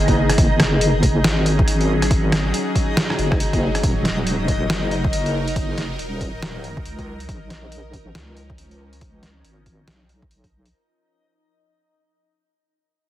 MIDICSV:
0, 0, Header, 1, 5, 480
1, 0, Start_track
1, 0, Tempo, 431655
1, 423, Time_signature, 4, 2, 24, 8
1, 14556, End_track
2, 0, Start_track
2, 0, Title_t, "Synth texture"
2, 0, Program_c, 0, 99
2, 0, Note_on_c, 0, 63, 87
2, 0, Note_on_c, 0, 75, 88
2, 11955, Note_off_c, 0, 63, 0
2, 11955, Note_off_c, 0, 75, 0
2, 14556, End_track
3, 0, Start_track
3, 0, Title_t, "Synth drone"
3, 0, Program_c, 1, 95
3, 0, Note_on_c, 1, 51, 82
3, 0, Note_on_c, 1, 59, 70
3, 0, Note_on_c, 1, 68, 90
3, 385, Note_off_c, 1, 51, 0
3, 385, Note_off_c, 1, 59, 0
3, 385, Note_off_c, 1, 68, 0
3, 422, Note_on_c, 1, 54, 80
3, 423, Note_on_c, 1, 61, 74
3, 423, Note_on_c, 1, 68, 88
3, 4224, Note_off_c, 1, 61, 0
3, 4224, Note_off_c, 1, 68, 0
3, 4265, Note_on_c, 1, 63, 73
3, 4265, Note_on_c, 1, 70, 86
3, 8058, Note_off_c, 1, 54, 0
3, 8065, Note_off_c, 1, 63, 0
3, 8103, Note_on_c, 1, 61, 71
3, 8104, Note_on_c, 1, 53, 76
3, 11899, Note_off_c, 1, 70, 0
3, 11904, Note_off_c, 1, 61, 0
3, 11905, Note_off_c, 1, 53, 0
3, 14556, End_track
4, 0, Start_track
4, 0, Title_t, "Wobble bass"
4, 0, Program_c, 2, 39
4, 0, Note_on_c, 2, 30, 94
4, 407, Note_off_c, 2, 30, 0
4, 423, Note_on_c, 2, 30, 91
4, 1367, Note_off_c, 2, 30, 0
4, 1382, Note_on_c, 2, 32, 95
4, 2807, Note_off_c, 2, 32, 0
4, 3543, Note_on_c, 2, 30, 92
4, 4248, Note_off_c, 2, 30, 0
4, 4264, Note_on_c, 2, 27, 92
4, 5208, Note_off_c, 2, 27, 0
4, 5223, Note_on_c, 2, 30, 91
4, 6648, Note_off_c, 2, 30, 0
4, 6663, Note_on_c, 2, 27, 92
4, 7607, Note_off_c, 2, 27, 0
4, 7622, Note_on_c, 2, 37, 98
4, 8087, Note_off_c, 2, 37, 0
4, 8103, Note_on_c, 2, 34, 90
4, 9048, Note_off_c, 2, 34, 0
4, 9062, Note_on_c, 2, 37, 95
4, 10487, Note_off_c, 2, 37, 0
4, 10502, Note_on_c, 2, 32, 91
4, 10967, Note_off_c, 2, 32, 0
4, 10983, Note_on_c, 2, 35, 90
4, 11928, Note_off_c, 2, 35, 0
4, 14556, End_track
5, 0, Start_track
5, 0, Title_t, "Drums"
5, 89, Note_on_c, 9, 36, 63
5, 89, Note_on_c, 9, 42, 38
5, 200, Note_off_c, 9, 36, 0
5, 200, Note_off_c, 9, 42, 0
5, 328, Note_on_c, 9, 37, 52
5, 328, Note_on_c, 9, 42, 66
5, 423, Note_off_c, 9, 42, 0
5, 423, Note_on_c, 9, 36, 117
5, 423, Note_on_c, 9, 42, 80
5, 439, Note_off_c, 9, 37, 0
5, 534, Note_off_c, 9, 36, 0
5, 534, Note_off_c, 9, 42, 0
5, 663, Note_on_c, 9, 37, 59
5, 663, Note_on_c, 9, 38, 65
5, 663, Note_on_c, 9, 42, 51
5, 775, Note_off_c, 9, 37, 0
5, 775, Note_off_c, 9, 38, 0
5, 775, Note_off_c, 9, 42, 0
5, 903, Note_on_c, 9, 42, 79
5, 1015, Note_off_c, 9, 42, 0
5, 1143, Note_on_c, 9, 36, 61
5, 1144, Note_on_c, 9, 42, 54
5, 1254, Note_off_c, 9, 36, 0
5, 1255, Note_off_c, 9, 42, 0
5, 1383, Note_on_c, 9, 38, 118
5, 1383, Note_on_c, 9, 42, 80
5, 1494, Note_off_c, 9, 38, 0
5, 1494, Note_off_c, 9, 42, 0
5, 1623, Note_on_c, 9, 42, 54
5, 1735, Note_off_c, 9, 42, 0
5, 1769, Note_on_c, 9, 36, 102
5, 1864, Note_on_c, 9, 42, 78
5, 1880, Note_off_c, 9, 36, 0
5, 1975, Note_off_c, 9, 42, 0
5, 2009, Note_on_c, 9, 42, 36
5, 2120, Note_off_c, 9, 42, 0
5, 2250, Note_on_c, 9, 37, 53
5, 2250, Note_on_c, 9, 42, 61
5, 2343, Note_on_c, 9, 36, 119
5, 2344, Note_off_c, 9, 42, 0
5, 2344, Note_on_c, 9, 42, 75
5, 2361, Note_off_c, 9, 37, 0
5, 2454, Note_off_c, 9, 36, 0
5, 2455, Note_off_c, 9, 42, 0
5, 2584, Note_on_c, 9, 37, 57
5, 2584, Note_on_c, 9, 38, 63
5, 2584, Note_on_c, 9, 42, 51
5, 2695, Note_off_c, 9, 37, 0
5, 2695, Note_off_c, 9, 38, 0
5, 2695, Note_off_c, 9, 42, 0
5, 2823, Note_on_c, 9, 42, 73
5, 2935, Note_off_c, 9, 42, 0
5, 3063, Note_on_c, 9, 36, 62
5, 3065, Note_on_c, 9, 42, 51
5, 3174, Note_off_c, 9, 36, 0
5, 3176, Note_off_c, 9, 42, 0
5, 3303, Note_on_c, 9, 38, 124
5, 3303, Note_on_c, 9, 42, 78
5, 3415, Note_off_c, 9, 38, 0
5, 3415, Note_off_c, 9, 42, 0
5, 3449, Note_on_c, 9, 37, 70
5, 3544, Note_on_c, 9, 42, 49
5, 3561, Note_off_c, 9, 37, 0
5, 3655, Note_off_c, 9, 42, 0
5, 3689, Note_on_c, 9, 36, 103
5, 3689, Note_on_c, 9, 37, 46
5, 3783, Note_on_c, 9, 42, 78
5, 3800, Note_off_c, 9, 36, 0
5, 3800, Note_off_c, 9, 37, 0
5, 3894, Note_off_c, 9, 42, 0
5, 3929, Note_on_c, 9, 36, 61
5, 3929, Note_on_c, 9, 42, 32
5, 4040, Note_off_c, 9, 36, 0
5, 4040, Note_off_c, 9, 42, 0
5, 4169, Note_on_c, 9, 37, 51
5, 4169, Note_on_c, 9, 42, 61
5, 4264, Note_on_c, 9, 36, 114
5, 4265, Note_off_c, 9, 42, 0
5, 4265, Note_on_c, 9, 42, 74
5, 4280, Note_off_c, 9, 37, 0
5, 4375, Note_off_c, 9, 36, 0
5, 4376, Note_off_c, 9, 42, 0
5, 4504, Note_on_c, 9, 38, 60
5, 4504, Note_on_c, 9, 42, 49
5, 4615, Note_off_c, 9, 38, 0
5, 4615, Note_off_c, 9, 42, 0
5, 4745, Note_on_c, 9, 42, 72
5, 4856, Note_off_c, 9, 42, 0
5, 4983, Note_on_c, 9, 36, 59
5, 4984, Note_on_c, 9, 42, 48
5, 5095, Note_off_c, 9, 36, 0
5, 5096, Note_off_c, 9, 42, 0
5, 5225, Note_on_c, 9, 38, 113
5, 5225, Note_on_c, 9, 42, 73
5, 5336, Note_off_c, 9, 38, 0
5, 5336, Note_off_c, 9, 42, 0
5, 5464, Note_on_c, 9, 42, 48
5, 5575, Note_off_c, 9, 42, 0
5, 5609, Note_on_c, 9, 36, 104
5, 5704, Note_on_c, 9, 42, 75
5, 5721, Note_off_c, 9, 36, 0
5, 5815, Note_off_c, 9, 42, 0
5, 5850, Note_on_c, 9, 42, 33
5, 5961, Note_off_c, 9, 42, 0
5, 6089, Note_on_c, 9, 42, 55
5, 6184, Note_off_c, 9, 42, 0
5, 6184, Note_on_c, 9, 36, 109
5, 6184, Note_on_c, 9, 42, 71
5, 6295, Note_off_c, 9, 36, 0
5, 6295, Note_off_c, 9, 42, 0
5, 6424, Note_on_c, 9, 38, 56
5, 6424, Note_on_c, 9, 42, 47
5, 6535, Note_off_c, 9, 38, 0
5, 6535, Note_off_c, 9, 42, 0
5, 6663, Note_on_c, 9, 42, 73
5, 6775, Note_off_c, 9, 42, 0
5, 6904, Note_on_c, 9, 36, 57
5, 6904, Note_on_c, 9, 42, 48
5, 7015, Note_off_c, 9, 36, 0
5, 7015, Note_off_c, 9, 42, 0
5, 7144, Note_on_c, 9, 38, 112
5, 7144, Note_on_c, 9, 42, 70
5, 7256, Note_off_c, 9, 38, 0
5, 7256, Note_off_c, 9, 42, 0
5, 7383, Note_on_c, 9, 42, 46
5, 7494, Note_off_c, 9, 42, 0
5, 7529, Note_on_c, 9, 36, 97
5, 7623, Note_on_c, 9, 42, 68
5, 7640, Note_off_c, 9, 36, 0
5, 7734, Note_off_c, 9, 42, 0
5, 7769, Note_on_c, 9, 36, 57
5, 7769, Note_on_c, 9, 42, 31
5, 7880, Note_off_c, 9, 36, 0
5, 7880, Note_off_c, 9, 42, 0
5, 8009, Note_on_c, 9, 42, 58
5, 8103, Note_on_c, 9, 36, 111
5, 8104, Note_off_c, 9, 42, 0
5, 8104, Note_on_c, 9, 42, 75
5, 8215, Note_off_c, 9, 36, 0
5, 8215, Note_off_c, 9, 42, 0
5, 8344, Note_on_c, 9, 38, 54
5, 8344, Note_on_c, 9, 42, 49
5, 8456, Note_off_c, 9, 38, 0
5, 8456, Note_off_c, 9, 42, 0
5, 8583, Note_on_c, 9, 42, 73
5, 8694, Note_off_c, 9, 42, 0
5, 8824, Note_on_c, 9, 36, 55
5, 8824, Note_on_c, 9, 42, 48
5, 8935, Note_off_c, 9, 36, 0
5, 8935, Note_off_c, 9, 42, 0
5, 9063, Note_on_c, 9, 38, 104
5, 9063, Note_on_c, 9, 42, 75
5, 9174, Note_off_c, 9, 38, 0
5, 9174, Note_off_c, 9, 42, 0
5, 9303, Note_on_c, 9, 42, 46
5, 9414, Note_off_c, 9, 42, 0
5, 9449, Note_on_c, 9, 36, 93
5, 9543, Note_on_c, 9, 42, 74
5, 9561, Note_off_c, 9, 36, 0
5, 9654, Note_off_c, 9, 42, 0
5, 9688, Note_on_c, 9, 42, 34
5, 9800, Note_off_c, 9, 42, 0
5, 9928, Note_on_c, 9, 42, 57
5, 10022, Note_off_c, 9, 42, 0
5, 10022, Note_on_c, 9, 42, 72
5, 10024, Note_on_c, 9, 36, 104
5, 10133, Note_off_c, 9, 42, 0
5, 10135, Note_off_c, 9, 36, 0
5, 10262, Note_on_c, 9, 38, 53
5, 10262, Note_on_c, 9, 42, 52
5, 10373, Note_off_c, 9, 38, 0
5, 10373, Note_off_c, 9, 42, 0
5, 10503, Note_on_c, 9, 42, 76
5, 10614, Note_off_c, 9, 42, 0
5, 10743, Note_on_c, 9, 42, 51
5, 10744, Note_on_c, 9, 36, 55
5, 10854, Note_off_c, 9, 42, 0
5, 10855, Note_off_c, 9, 36, 0
5, 10982, Note_on_c, 9, 38, 108
5, 10982, Note_on_c, 9, 42, 75
5, 11093, Note_off_c, 9, 38, 0
5, 11093, Note_off_c, 9, 42, 0
5, 11223, Note_on_c, 9, 42, 49
5, 11334, Note_off_c, 9, 42, 0
5, 11369, Note_on_c, 9, 36, 93
5, 11463, Note_on_c, 9, 42, 74
5, 11481, Note_off_c, 9, 36, 0
5, 11574, Note_off_c, 9, 42, 0
5, 11609, Note_on_c, 9, 36, 57
5, 11609, Note_on_c, 9, 42, 35
5, 11720, Note_off_c, 9, 42, 0
5, 11721, Note_off_c, 9, 36, 0
5, 11849, Note_on_c, 9, 42, 63
5, 11960, Note_off_c, 9, 42, 0
5, 14556, End_track
0, 0, End_of_file